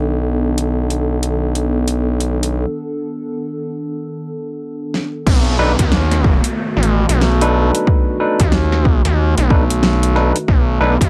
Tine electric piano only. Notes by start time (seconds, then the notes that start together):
5.59 D4 D#4 A4 B4
7.42 D4 D#4 A4 B4
8.20 D4 D#4 A4 B4
9.50 D4 D#4 A4 B4
10.16 D4 D#4 A4 B4
10.80 D4 D#4 A4 B4